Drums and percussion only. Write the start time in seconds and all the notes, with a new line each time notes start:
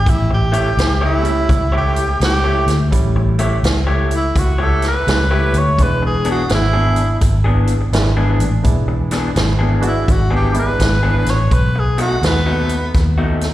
0.06 kick, closed hi-hat
0.53 closed hi-hat
0.79 snare, closed hi-hat
1.25 closed hi-hat
1.49 kick, closed hi-hat
1.96 closed hi-hat
2.21 snare, closed hi-hat
2.68 snare, closed hi-hat
2.92 kick, closed hi-hat
3.39 closed hi-hat
3.64 snare, closed hi-hat
4.11 closed hi-hat
4.36 kick, closed hi-hat
4.82 snare, closed hi-hat
5.08 snare, closed hi-hat
5.54 closed hi-hat
5.79 kick, closed hi-hat
6.25 closed hi-hat
6.49 snare, closed hi-hat
6.96 closed hi-hat
7.21 kick, closed hi-hat
7.67 closed hi-hat
7.93 snare, closed hi-hat
8.40 closed hi-hat
8.64 kick, closed hi-hat
9.11 snare, closed hi-hat
9.36 snare, closed hi-hat
9.82 closed hi-hat
10.08 kick, closed hi-hat
10.54 closed hi-hat
10.80 kick, snare, closed hi-hat
11.26 snare, closed hi-hat
11.51 kick, closed hi-hat
11.98 closed hi-hat
12.23 snare, closed hi-hat
12.69 closed hi-hat
12.94 kick, snare, closed hi-hat
13.41 snare, closed hi-hat